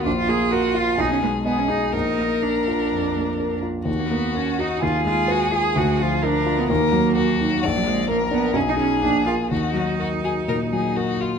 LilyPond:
<<
  \new Staff \with { instrumentName = "Violin" } { \time 4/4 \key ees \minor \tempo 4 = 127 f'2 aes'4 aes'4 | bes'2.~ bes'8 r8 | ges'2 aes'2~ | aes'4 bes'4 bes'4 ges'4 |
d''4 bes'4 aes'2 | ges'4 ges'8 aes'8 bes'8 aes'8 ges'8 f'8 | }
  \new Staff \with { instrumentName = "Grand piano" } { \time 4/4 \key ees \minor bes,,8 bes8 bes'8 f'8 ces,8 aes8 ees''8 aes'8 | bes,,8 bes8 bes'8 f'8 f,8 bes8 bes'8 f'8 | ees,8 bes8 bes'8 ges'8 ees,8 aes8 ces''8 f'8 | d,8 f8 bes'8 f'8 ees,8 ges8 bes'8 ees'8 |
bes,,8 f8 bes'8 d'8 ces,8 <ees' aes'>8 bes,,8 <f' bes'>8 | ees,8 ges8 bes'8 ges'8 bes,8 ges8 bes'8 ges'8 | }
  \new Staff \with { instrumentName = "Cello" } { \time 4/4 \key ees \minor d'16 f'16 aes'8 ges'8 f'8 ees'16 des'16 ces'8 ces'16 des'16 ees'8 | ees'4 d'2~ d'8 r8 | r16 bes16 ces'8 des'8 ees'8 f'8 f'8 ges'8 aes'8 | ges'8 f'8 d'8. ces'16 bes2 |
r16 ges16 aes8 bes8 ces'8 des'16 ees'16 des'8 d'8 f'8 | ees'2.~ ees'8 r8 | }
>>